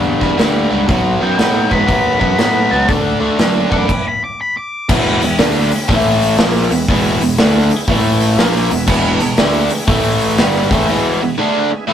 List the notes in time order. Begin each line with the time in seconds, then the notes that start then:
Already playing: E2 G2 D3 G3 B3 D4 G4 A4 G5
0.20 E2 G2 D3 G3 B3 D4 G4 C#5 E5, kick, snare
0.38 D2 G2 D3 G3 B3, snare, open hi-hat
0.42 D4 G4 B4 F#5
0.70 C#2 G2 D3 G3 B3 D4 G5
0.74 G4 B4
0.88 B1 B2 F#3 B3, kick, open hi-hat
0.92 B3 D#4 F#4 B4
1.21 F#2 B2 F#3 B3 D#4 F#4 C#5 G5
1.38 A2 B2 F#3 B3 D#4 F#4 B4 G5, snare, open hi-hat
1.70 G#2 B2 F#3 B3 D#4 F#4 B4 B5, kick
1.87 D#2 B2 F#3 B3 D#4 F#4 B4, kick, open hi-hat
2.19 F#2 B2 F#3 B3 D#4 F#4, kick
2.24 A4
2.38 A2 B2 F#3 B3 D#4 F#4 B4 B5, snare, open hi-hat
2.69 C#2 B2 F#3 B3 D#4 F#4 B4 A5
2.73 F#4
2.87 D2 D3 A3 D4 F#4 A4, kick, open hi-hat
3.19 D3 A3 D4 F#4 A4
3.38 F#2 D3 A3 D4 F#4 B4, snare, open hi-hat
3.70 F#2 D3 A3 D4 F#4 B4 D6, kick
3.89 kick, crash
4.08 B5
4.24 D6
4.41 B5
4.57 D6
4.89 E1 E2 B2 E3 G#3 B3 E4 G#4, kick, crash
5.21 E1 E2 B2 G#3 B3 E4 B4, open hi-hat
5.39 D2 D3 G#3 A3 B3 D4 E4 F#4, snare, open hi-hat
5.71 G#3 B3, muted overdriven electric guitar stroke, muted picked electric bass stroke, open hi-hat
5.75 E4 F#4
5.88 A1 A2 E3 A3 E4, kick, open hi-hat
5.93 A4
6.21 E3 A3 E4 A4, open hi-hat
6.38 A#1 A#2 F3 G#3 A#3 B3 E4, snare, open hi-hat
6.42 G#4
6.55 snare
6.71 E1 E2 B2 G#3 B3 E4 B4, open hi-hat
6.88 E1 E2 B2 E3 G#3 B3 E4 G#4, kick, open hi-hat
7.21 E1 E2 B2 G#3 B3 E4, open hi-hat
7.25 G#4
7.38 D2 D3 G#3 A3 B3 D4 E4 B4, snare, open hi-hat
7.70 G#3 B3 E4 G#4, muted picked electric bass stroke, muted overdriven electric guitar stroke, open hi-hat
7.86 A1 A2 E3 A3 E4 A4, kick, open hi-hat
8.18 E3 A3 E4 B4 A5, open hi-hat
8.35 A#1 A#2 F3 G#3 B3 E4 G#4 G#5, snare, open hi-hat
8.39 A#3
8.56 snare
8.69 E1 E2 B2 G#3 B3 E4 B4 E5, open hi-hat
8.86 E1 E2 B2 E3 G#3 B3 E4 B4, kick, crash
9.20 E1 E2 B2 G#3 B3 E4 G#4, open hi-hat
9.37 D2 D3 G#3 A3 B3 D4 E4 G#4, snare, open hi-hat
9.70 G#3 B3 E4 G#4, muted picked electric bass stroke, muted overdriven electric guitar stroke, open hi-hat
9.87 A1 A2 E3 A3 E4 A4, kick, open hi-hat
10.20 E3 A3 E4 G#4, open hi-hat
10.38 G1 G2 D3 G3 G#3 B3 E4 G#4, snare, open hi-hat
10.56 snare
10.71 A1 A2 E3 G#3 A3 B3 E4 G#4, kick, open hi-hat
10.88 E2 B2 E3 G#3 B3 E4 G#4
11.21 E2 B2 G#3 B3 E4 G#4
11.38 D3 G#3 A3 B3 D4 E4 G#4
11.71 G#3 B3 E4 G#4, muted overdriven electric guitar stroke
11.87 A2 E3 A3 E4 A4